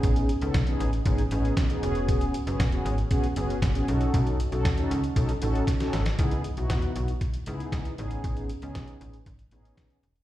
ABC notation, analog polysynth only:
X:1
M:4/4
L:1/16
Q:1/4=117
K:C#m
V:1 name="Analog polysynth"
[B,CDG]2 z [B,CDA] z [B,CDG]2 z [B,CDG] z [B,CDG]2 z [B,CDG] [B,CFG]2- | [B,CFG]2 z [B,CFG] z [B,CFG]2 z [B,CFG] z [B,CFG]2 z [B,CFG] [CDFA]2- | [CDFA]2 z [CDFA] z [CDFA]2 z [CDFA] z [CDFA]2 z [CDFA]2 z | [B,DEG]2 z [B,DEF]4 z3 [B,DEG]4 [B,CDG]2- |
[B,CDG]2 z [B,CDG]4 z3 [B,CDG]4 z2 |]